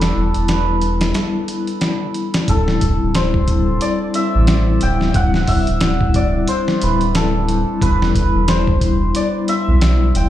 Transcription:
0.00 0.12 E1 loud
0.00 0.77 G3 medium
0.00 0.80 B3 medium
0.00 0.82 D4 medium
0.00 0.85 E4 loud
0.00 2.49 A4 loud
0.00 0.49 B4 loud
0.00 0.95 D5 loud
0.00 snare medium
0.00 closed hi-hat medium
0.16 0.33 E1 medium
0.34 1.13 E1 medium
0.34 closed hi-hat medium
0.48 3.21 B4 medium
0.48 snare loud
0.48 closed hi-hat medium
0.77 2.42 G3 medium
0.77 2.44 B3 medium
0.82 2.45 D4 medium
0.82 2.47 E4 medium
0.82 closed hi-hat medium
1.01 snare loud
1.01 closed hi-hat medium
1.14 snare loud
1.14 closed hi-hat medium
1.48 closed hi-hat medium
1.67 closed hi-hat soft
1.81 snare loud
1.81 closed hi-hat medium
2.14 closed hi-hat medium
2.34 snare loud
2.34 closed hi-hat medium
2.44 3.43 G3 medium
2.44 3.44 C4 medium
2.48 2.78 D1 loud
2.48 3.46 D4 medium
2.48 5.42 A4 loud
2.48 kick loud
2.48 closed hi-hat medium
2.52 3.47 E4 loud
2.68 snare medium
2.81 2.99 D1 medium
2.81 kick medium
2.81 closed hi-hat medium
3.02 3.80 D1 medium
3.15 5.79 C5 loud
3.15 snare loud
3.15 closed hi-hat medium
3.34 kick loud
3.46 4.11 G3 medium
3.46 4.12 C4 medium
3.46 4.13 D4 medium
3.46 kick medium
3.46 closed hi-hat medium
3.50 4.13 E4 medium
3.81 6.15 D5 loud
3.81 closed hi-hat medium
4.12 4.35 G3 medium
4.12 4.36 C4 medium
4.12 4.36 D4 medium
4.12 5.48 E5 loud
4.12 closed hi-hat medium
4.17 4.37 E4 loud
4.35 4.79 A1 medium
4.47 snare loud
4.47 closed hi-hat medium
4.81 5.12 D1 loud
4.81 5.09 G5 loud
4.81 closed hi-hat medium
5.01 snare soft
5.09 6.09 G3 medium
5.09 6.11 C4 medium
5.09 5.21 G5 medium
5.14 5.45 D1 loud
5.14 6.12 D4 medium
5.14 7.30 F#5 loud
5.14 kick loud
5.14 closed hi-hat medium
5.18 6.13 E4 loud
5.34 snare soft
5.47 5.65 D1 medium
5.47 7.78 E5 loud
5.47 kick medium
5.47 open hi-hat medium
5.67 6.46 D1 medium
5.67 closed hi-hat soft
5.81 snare loud
5.81 closed hi-hat medium
6.01 kick medium
6.13 6.78 G3 medium
6.13 6.78 C4 medium
6.13 6.79 D4 medium
6.13 8.62 D5 loud
6.13 kick loud
6.13 closed hi-hat medium
6.17 6.80 E4 medium
6.48 6.89 C5 loud
6.48 closed hi-hat medium
6.68 snare medium
6.80 7.64 D1 loud
6.80 7.02 G3 medium
6.80 7.02 C4 medium
6.80 7.03 D4 medium
6.80 7.82 B4 loud
6.80 closed hi-hat medium
6.84 7.04 E4 loud
7.01 closed hi-hat soft
7.15 10.08 A4 medium
7.15 snare loud
7.15 closed hi-hat medium
7.49 closed hi-hat medium
7.77 8.76 G3 medium
7.77 8.78 B3 medium
7.82 8.12 E1 loud
7.82 8.79 D4 medium
7.82 8.80 E4 loud
7.82 8.55 B4 loud
7.82 kick loud
7.82 closed hi-hat medium
8.02 snare medium
8.15 8.32 E1 medium
8.15 kick loud
8.15 closed hi-hat medium
8.34 9.12 E1 medium
8.48 10.29 C5 loud
8.48 snare loud
8.48 closed hi-hat medium
8.67 kick loud
8.79 9.44 G3 medium
8.79 9.46 D4 medium
8.79 kick medium
8.79 closed hi-hat medium
8.84 9.47 E4 medium
9.15 9.25 D5 loud
9.15 closed hi-hat medium
9.47 9.69 G3 medium
9.47 9.69 B3 medium
9.47 9.70 D4 medium
9.47 10.29 E5 loud
9.47 closed hi-hat medium
9.51 9.71 E4 loud
9.68 10.12 B1 medium
9.81 snare loud
9.81 closed hi-hat medium
10.15 10.29 E1 medium
10.15 10.29 G5 medium
10.15 closed hi-hat medium

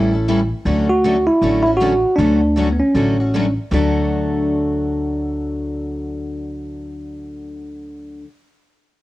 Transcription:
0.00 0.51 A1 medium
0.00 0.11 E3 medium
0.00 0.11 G3 medium
0.00 0.11 C#4 medium
0.00 0.11 E4 medium
0.00 0.48 E4 medium
0.00 0.11 A4 medium
0.13 0.27 C#4 soft
0.13 0.28 E4 soft
0.13 0.27 A4 soft
0.28 0.39 E3 medium
0.28 0.39 G3 medium
0.28 0.39 C#4 medium
0.28 0.40 E4 medium
0.28 0.40 A4 medium
0.65 1.27 D2 medium
0.65 0.87 D3 medium
0.65 0.87 F#3 medium
0.65 0.87 A3 medium
0.65 0.87 C#4 medium
0.65 0.87 F#4 medium
0.65 0.87 A4 medium
0.90 1.25 F#4 loud
1.04 1.15 D3 medium
1.04 1.16 F#3 medium
1.04 1.16 A3 medium
1.04 1.16 C#4 medium
1.04 1.16 F#4 loud
1.04 1.16 A4 medium
1.27 1.61 E4 loud
1.42 2.03 A1 medium
1.42 1.63 D3 medium
1.42 1.64 F#3 medium
1.42 1.63 A3 medium
1.42 1.64 C#4 medium
1.42 1.64 F#4 medium
1.42 1.64 A4 medium
1.63 1.70 E4 loud
1.63 1.80 F#4 medium
1.67 1.80 A3 soft
1.67 1.80 C#4 medium
1.77 1.92 D3 medium
1.77 2.14 F#4 loud
1.81 1.92 F#3 medium
1.81 1.92 A3 medium
1.81 1.92 C#4 loud
1.81 1.92 F#4 medium
1.81 1.92 A4 medium
2.16 2.79 D2 loud
2.16 2.40 D3 medium
2.16 2.40 F#3 medium
2.16 2.40 A3 medium
2.16 2.66 D4 medium
2.16 2.40 A4 medium
2.20 2.40 C#4 medium
2.20 2.40 F#4 medium
2.57 2.68 D3 medium
2.57 2.68 F#3 medium
2.57 2.68 A3 medium
2.57 2.69 C#4 medium
2.57 2.69 F#4 medium
2.57 2.68 A4 loud
2.73 2.81 B3 medium
2.80 3.52 C#4 medium
2.94 3.56 A1 medium
2.94 3.16 D3 medium
2.94 3.16 F#3 medium
2.94 3.16 A3 medium
2.94 3.17 C#4 medium
2.94 3.17 F#4 medium
2.94 3.16 A4 medium
3.20 3.34 A3 soft
3.20 3.34 C#4 medium
3.20 3.33 F#4 medium
3.34 3.45 D3 medium
3.34 3.45 F#3 medium
3.34 3.45 A3 loud
3.34 3.45 C#4 medium
3.34 3.46 F#4 medium
3.34 3.45 A4 medium
3.71 8.22 D2 medium
3.71 8.27 D3 medium
3.71 8.27 F#3 medium
3.71 8.28 A3 medium
3.71 8.24 D4 medium
3.71 8.27 A4 loud
3.75 8.28 F#4 medium

